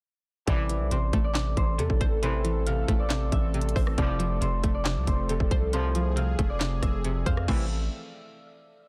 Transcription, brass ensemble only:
0.48 0.89 C2 loud
0.48 0.89 A2 loud
0.48 0.89 E3 loud
2.23 2.64 C2 loud
2.23 2.64 A2 loud
2.23 2.64 E3 loud
3.98 4.39 C2 loud
3.98 4.39 A2 loud
3.98 4.39 F3 loud
5.73 6.15 C2 medium
5.73 6.15 A2 loud
5.73 6.15 F3 loud
7.48 7.64 C2 medium
7.48 7.64 A2 medium
7.48 7.64 E3 loud

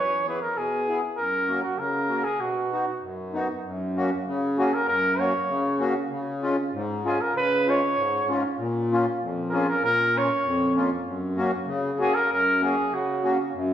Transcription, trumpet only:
0.00 0.26 C#5 medium
0.29 0.41 B4 medium
0.41 0.59 A#4 medium
0.57 1.03 G#4 medium
1.18 1.61 A#4 medium
1.63 1.80 F#4 medium
1.79 2.26 A#4 medium
2.24 2.42 G#4 medium
2.40 3.02 F#4 medium
4.58 4.75 G#4 medium
4.74 4.88 A#4 medium
4.88 5.21 A#4 loud
5.19 5.81 C#5 medium
7.07 7.23 G#4 medium
7.21 7.36 A#4 medium
7.37 7.71 B4 loud
7.69 8.31 C#5 medium
9.50 9.68 G#4 medium
9.50 9.54 A#4 medium
9.68 9.82 A#4 medium
9.84 10.19 A#4 loud
10.18 10.79 C#5 medium
12.00 12.16 G#4 medium
12.14 12.30 A#4 medium
12.33 12.62 A#4 medium
12.64 12.95 G#4 medium
12.94 13.40 F#4 medium

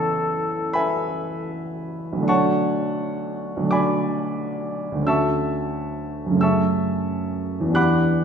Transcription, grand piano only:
0.00 2.22 A1 soft
0.00 2.23 C#3 soft
0.00 2.23 B3 soft
0.00 2.24 E4 soft
0.00 0.72 A4 medium
0.00 0.75 C#5 medium
0.73 2.24 B4 soft
0.73 2.24 E5 medium
0.73 2.25 G#5 medium
0.73 2.28 B5 medium
2.13 3.55 B1 soft
2.17 3.58 D3 soft
2.17 3.61 A3 soft
2.23 3.63 D4 soft
2.23 3.65 F#4 soft
2.28 3.66 C#5 medium
2.28 3.66 F#5 medium
2.28 3.66 A5 medium
2.28 3.70 C#6 medium
3.57 4.96 B1 soft
3.57 4.94 D3 soft
3.63 4.97 A3 soft
3.63 5.01 D4 soft
3.70 5.03 F#4 soft
3.70 5.04 D5 medium
3.70 5.04 G#5 medium
3.70 5.04 B5 medium
3.70 5.07 D6 medium
4.92 6.30 D2 soft
4.92 6.32 D3 soft
4.99 6.32 A3 soft
4.99 6.35 C#4 soft
5.06 6.37 F#4 soft
5.06 6.38 E5 medium
5.06 6.38 A5 medium
5.06 6.38 C#6 medium
5.06 6.39 E6 medium
6.26 7.64 F#2 soft
6.26 7.66 C#3 soft
6.33 7.68 A3 soft
6.33 7.69 C#4 soft
6.39 7.71 G#4 soft
6.39 7.72 E5 medium
6.39 7.72 A5 soft
6.39 7.72 C#6 soft
6.39 7.75 E6 medium
7.60 8.24 E2 soft
7.60 8.24 E3 soft
7.67 8.24 B3 soft
7.67 8.24 D4 soft
7.73 8.24 G4 soft
7.73 8.24 F#5 medium
7.73 8.24 B5 medium
7.73 8.24 D6 medium
7.73 8.24 F#6 medium

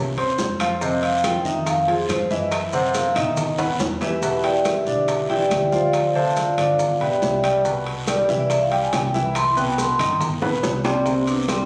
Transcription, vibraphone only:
0.82 1.02 D#5 medium
1.03 1.23 F5 medium
1.24 1.45 G5 medium
1.45 1.66 E5 medium
1.67 1.88 F5 medium
1.88 2.09 G#4 medium
2.10 2.30 C5 medium
2.31 2.51 D#5 medium
2.52 2.73 E5 medium
2.73 2.94 F#5 loud
2.95 3.16 F5 medium
3.16 3.36 E5 medium
3.37 3.58 D#5 medium
3.58 3.71 F#5 medium
4.01 4.41 E4 medium
4.01 4.41 G4 medium
4.01 4.41 B4 medium
4.01 4.41 E5 medium
4.44 4.65 G4 medium
4.44 4.65 D5 medium
4.44 4.64 E5 medium
4.44 4.65 G5 loud
4.65 5.26 E4 soft
4.65 5.26 G4 medium
4.65 5.26 B4 medium
4.65 5.26 E5 medium
5.30 5.90 G4 medium
5.30 5.72 D5 medium
5.30 5.90 E5 medium
5.30 5.90 G5 loud
5.73 6.13 F4 medium
5.73 6.13 C5 medium
5.73 6.13 D5 medium
5.73 6.12 F5 medium
6.15 6.36 A4 medium
6.15 6.36 E5 medium
6.15 6.36 F5 medium
6.15 6.36 A5 loud
6.37 6.97 F4 medium
6.37 6.77 C5 medium
6.37 6.97 D5 medium
6.37 6.97 F5 medium
7.01 7.61 G4 medium
7.01 7.61 D5 medium
7.01 7.61 E5 medium
7.01 7.61 G5 medium
8.08 8.18 D5 medium
8.19 8.29 G4 medium
8.29 8.39 B4 medium
8.40 8.50 D5 medium
8.51 8.61 E5 medium
8.61 8.71 F5 medium
8.72 8.82 G5 loud
8.83 8.93 G#5 medium
8.94 9.23 G5 medium
9.25 9.36 B5 medium
9.36 9.46 C6 loud
9.47 9.57 E5 medium
9.57 9.67 G5 loud
9.68 9.78 B5 medium
9.79 10.18 C6 medium
10.85 11.29 C4 medium
11.28 11.50 D4 medium
11.49 11.65 C4 medium

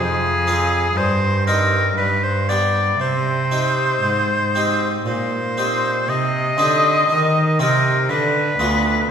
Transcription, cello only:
0.00 0.96 F2 medium
0.97 1.95 G2 medium
1.97 2.98 G2 medium
3.00 4.01 C3 medium
4.04 5.04 G#2 medium
5.07 6.06 A#2 soft
6.09 6.60 C3 medium
6.59 7.09 D3 medium
7.09 7.61 D#3 medium
7.60 8.11 C3 medium
8.09 8.58 D3 medium
8.59 9.08 D2 medium

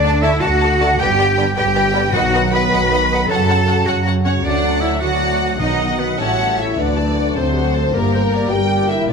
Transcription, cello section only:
0.00 0.23 D4 medium
0.24 0.43 E4 medium
0.43 0.99 F#4 loud
1.00 1.55 G4 loud
1.56 2.12 G4 loud
2.13 2.51 F#4 loud
2.53 3.28 B4 loud
3.29 3.85 A4 loud
3.87 4.05 F#4 medium
4.25 4.32 C#4 medium
4.43 4.81 D4 medium
4.81 4.89 E4 medium
5.01 5.58 F#4 medium
5.59 5.98 D#4 medium
5.99 6.07 B3 medium
6.19 6.77 C#4 medium
6.77 7.29 D2 medium
7.37 7.87 D2 medium
7.94 8.45 G2 medium
8.51 9.02 G2 medium
9.08 9.13 A#2 medium

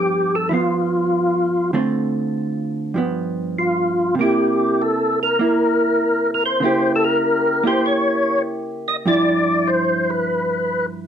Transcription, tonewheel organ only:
0.00 0.35 G4 medium
0.35 0.49 A4 medium
0.49 0.53 E4 medium
0.54 1.71 F4 medium
3.59 4.15 F4 medium
4.21 4.82 G4 medium
4.82 5.19 A4 medium
5.23 6.31 A#4 medium
6.34 6.44 A#4 medium
6.46 6.92 C5 loud
6.96 7.05 A4 medium
7.04 7.67 A#4 loud
7.67 7.86 C5 loud
7.86 8.42 C#5 medium
8.88 8.97 D#5 medium
9.08 9.70 D5 loud
9.67 10.11 C5 medium
10.10 10.86 B4 medium

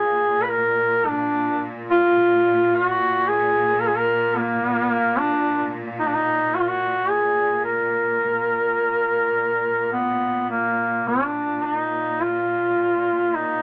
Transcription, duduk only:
0.00 0.44 G#4 medium
0.42 0.51 B4 medium
0.49 1.08 A#4 loud
1.07 1.64 D4 medium
1.91 2.77 F4 loud
2.75 3.30 F#4 medium
3.28 3.82 G#4 medium
3.80 3.89 A#4 medium
3.87 3.98 G#4 medium
3.96 4.38 A#4 medium
4.37 5.20 A#3 medium
5.18 5.75 D4 medium
5.99 6.08 D#4 medium
6.06 6.15 D4 medium
6.14 6.56 D#4 medium
6.55 6.62 F#4 medium
6.60 6.70 F4 medium
6.68 7.11 F#4 medium
7.10 7.64 G#4 medium
7.65 9.89 A#4 medium
9.92 10.47 B3 medium
10.50 11.09 A#3 medium
11.08 11.64 D4 medium
11.64 11.75 D4 medium
11.75 12.24 D#4 medium
12.22 13.36 F4 medium
13.35 13.62 D#4 medium

